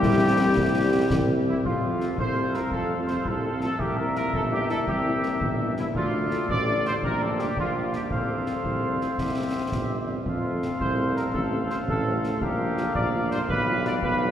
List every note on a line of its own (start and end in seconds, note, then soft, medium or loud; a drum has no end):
0.00 0.50 C2 medium
0.00 1.42 G3 medium
0.00 1.47 E4 medium
0.00 1.30 G4 medium
0.00 1.42 G4 medium
0.00 1.47 G4 medium
0.00 concert bass drum medium
0.00 snare medium
0.57 1.04 C2 medium
0.57 concert bass drum medium
0.57 snare medium
1.10 1.58 C2 medium
1.10 concert bass drum medium
1.10 snare medium
1.47 1.55 E4 medium
1.64 2.09 F2 soft
1.64 2.14 F4 medium
1.64 3.76 A4 soft
1.64 3.76 F5 soft
1.64 concert bass drum medium
1.83 1.90 A3 soft
1.83 1.90 C4 soft
1.83 1.90 F4 soft
2.00 2.08 A3 soft
2.00 2.07 C4 soft
2.00 2.07 F4 soft
2.00 snare soft
2.18 2.64 C2 soft
2.18 2.52 C5 medium
2.18 concert bass drum medium
2.36 2.43 A3 soft
2.36 2.43 C4 soft
2.36 2.43 F4 soft
2.54 2.61 A3 soft
2.54 2.61 C4 soft
2.54 2.61 F4 soft
2.54 2.72 A#4 medium
2.54 snare soft
2.71 3.17 F2 medium
2.71 3.06 A4 medium
2.71 concert bass drum medium
2.90 2.96 A3 soft
2.90 2.96 C4 soft
2.90 2.96 F4 soft
3.08 3.14 A3 soft
3.08 3.15 C4 soft
3.08 3.15 F4 soft
3.08 3.24 C5 medium
3.08 snare soft
3.25 3.71 C2 medium
3.25 3.60 A4 medium
3.25 concert bass drum medium
3.44 3.51 A3 soft
3.44 3.50 C4 soft
3.44 3.51 F4 soft
3.61 3.68 A3 soft
3.61 3.68 C4 soft
3.61 3.68 F4 soft
3.61 3.78 A4 medium
3.61 snare soft
3.78 4.25 C2 soft
3.78 3.98 G4 medium
3.78 5.91 A#4 soft
3.78 5.91 E5 soft
3.78 concert bass drum medium
3.97 4.04 G3 soft
3.97 4.04 A#3 soft
3.97 4.04 E4 soft
3.97 4.15 A#4 medium
4.15 4.22 G3 soft
4.15 4.22 A#3 soft
4.15 4.22 E4 soft
4.15 4.33 A#4 medium
4.15 snare soft
4.33 4.79 G1 medium
4.33 4.42 A4 medium
4.33 concert bass drum medium
4.51 4.58 G3 soft
4.51 4.58 A#3 soft
4.51 4.58 E4 soft
4.51 4.68 G4 medium
4.69 4.76 G3 soft
4.69 4.76 A#3 soft
4.69 4.76 E4 soft
4.69 4.77 A4 medium
4.69 snare soft
4.87 5.33 C2 medium
4.87 5.55 G4 medium
4.87 concert bass drum medium
5.04 5.11 G3 soft
5.04 5.11 A#3 soft
5.04 5.11 E4 soft
5.23 5.30 G3 soft
5.23 5.30 A#3 soft
5.23 5.30 E4 soft
5.23 snare soft
5.41 5.86 G1 medium
5.41 concert bass drum medium
5.59 5.65 G3 medium
5.59 5.66 A#3 soft
5.59 5.66 E4 soft
5.77 5.84 G3 medium
5.77 5.84 A#3 soft
5.77 5.85 E4 medium
5.77 5.84 E4 soft
5.77 snare soft
5.95 6.40 D2 medium
5.95 6.46 F4 medium
5.95 6.99 A4 medium
5.95 8.07 D5 medium
5.95 concert bass drum medium
6.13 6.20 D3 soft
6.13 6.20 A3 soft
6.13 6.20 D4 soft
6.31 6.38 D3 soft
6.31 6.38 A3 soft
6.31 6.38 D4 soft
6.31 snare soft
6.49 6.94 A1 medium
6.49 6.83 D5 medium
6.49 concert bass drum medium
6.67 6.74 D3 medium
6.67 6.74 A3 soft
6.67 6.74 D4 soft
6.85 6.91 D3 soft
6.85 6.92 A3 soft
6.85 6.92 D4 soft
6.85 6.94 C5 medium
6.85 snare soft
7.03 7.48 A#1 medium
7.03 8.07 G4 soft
7.03 7.20 A#4 medium
7.03 concert bass drum medium
7.20 7.27 D3 soft
7.20 7.27 G3 soft
7.20 7.27 D4 soft
7.20 7.40 A4 medium
7.38 7.45 D3 soft
7.38 7.45 G3 soft
7.38 7.45 D4 soft
7.38 7.58 G4 medium
7.38 snare soft
7.57 8.02 A#1 medium
7.57 7.91 F4 medium
7.57 concert bass drum medium
7.75 7.81 D3 soft
7.75 7.81 G3 soft
7.75 7.81 D4 soft
7.93 8.00 D3 soft
7.93 8.00 G3 soft
7.93 8.00 D4 soft
7.93 8.02 G4 medium
7.93 snare soft
8.11 8.56 C2 soft
8.11 9.18 A4 soft
8.11 10.05 C5 medium
8.11 9.15 F5 soft
8.11 concert bass drum medium
8.29 8.36 F3 soft
8.29 8.36 A3 soft
8.29 8.36 C4 soft
8.46 8.53 F3 soft
8.46 8.53 A3 soft
8.46 8.53 C4 soft
8.46 snare soft
8.64 9.09 C2 soft
8.64 concert bass drum medium
8.84 8.90 F3 soft
8.84 8.90 A3 soft
8.84 8.90 C4 soft
9.01 9.08 F3 soft
9.01 9.08 A3 soft
9.01 9.08 C4 soft
9.01 snare soft
9.18 9.64 C2 soft
9.18 10.09 G4 soft
9.18 10.09 E5 soft
9.18 concert bass drum medium
9.18 snare soft
9.38 9.44 E3 soft
9.38 9.44 G3 soft
9.38 9.44 C4 soft
9.55 9.61 E3 soft
9.55 9.61 G3 soft
9.55 9.62 C4 soft
9.72 10.18 G1 soft
9.72 concert bass drum medium
9.72 snare soft
9.91 9.97 E3 soft
9.91 9.97 G3 soft
9.91 9.97 C4 soft
10.09 10.15 E3 soft
10.09 10.15 G3 soft
10.09 10.15 C4 soft
10.26 10.71 F2 soft
10.26 10.77 F4 soft
10.26 12.38 A4 soft
10.26 12.39 F5 soft
10.26 concert bass drum medium
10.44 10.51 F3 soft
10.44 10.51 A3 soft
10.44 10.51 C4 soft
10.62 10.68 F3 soft
10.62 10.68 A3 soft
10.62 10.69 C4 soft
10.62 snare soft
10.80 11.25 C2 medium
10.80 11.13 C5 medium
10.80 concert bass drum medium
10.98 11.05 F3 soft
10.98 11.04 A3 soft
10.98 11.05 C4 soft
11.15 11.23 F3 soft
11.15 11.23 A3 soft
11.15 11.23 C4 soft
11.15 11.33 A#4 medium
11.15 snare soft
11.34 11.79 A1 medium
11.34 11.67 A4 medium
11.34 concert bass drum medium
11.52 11.59 F3 soft
11.52 11.58 A3 soft
11.52 11.59 C4 soft
11.70 11.77 F3 soft
11.70 11.77 A3 soft
11.70 11.77 C4 soft
11.70 11.78 C5 medium
11.70 snare soft
11.88 12.33 A1 medium
11.88 12.38 A4 medium
11.88 concert bass drum medium
12.07 12.14 F3 soft
12.07 12.14 A3 soft
12.07 12.13 C4 soft
12.24 12.30 F3 soft
12.24 12.30 A3 soft
12.24 12.31 C4 soft
12.24 snare soft
12.41 12.86 A#1 medium
12.41 12.96 G4 medium
12.41 13.45 A#4 medium
12.41 14.31 F5 soft
12.41 concert bass drum medium
12.59 12.66 G3 soft
12.59 12.65 D4 soft
12.59 12.66 F4 soft
12.77 12.84 G3 soft
12.77 12.84 D4 soft
12.77 12.84 F4 soft
12.77 snare soft
12.95 13.40 A#1 medium
12.95 13.29 D5 medium
12.95 concert bass drum medium
13.14 13.20 G3 soft
13.14 13.20 D4 soft
13.14 13.20 F4 soft
13.31 13.39 G3 soft
13.31 13.39 D4 soft
13.31 13.38 F4 soft
13.31 13.39 C5 medium
13.31 snare soft
13.49 13.94 B1 medium
13.49 14.31 G4 soft
13.49 13.83 B4 medium
13.49 concert bass drum medium
13.68 13.75 G3 soft
13.68 13.74 D4 soft
13.68 13.74 F4 soft
13.85 13.92 G3 medium
13.85 13.92 D4 soft
13.85 13.92 F4 soft
13.85 13.94 D5 medium
13.85 snare soft
14.02 14.31 B1 medium
14.02 14.31 B4 medium
14.02 concert bass drum medium
14.21 14.28 G3 soft
14.21 14.28 D4 soft
14.21 14.28 F4 soft